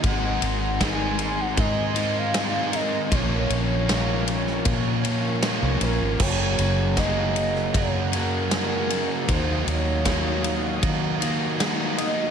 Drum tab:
CC |----------------|----------------|x---------------|----------------|
RD |x-x-x-x-x-x-x-x-|x-x-x-x-x-x-x-x-|--x-x-x-x-x-x-x-|x-x-x-x-x-x-x-x-|
SD |----o-------o---|----o--o----o---|----o--o----o---|----o-------o---|
BD |o---o---o-------|o-------o-------|o---o---o-------|o---o---o-------|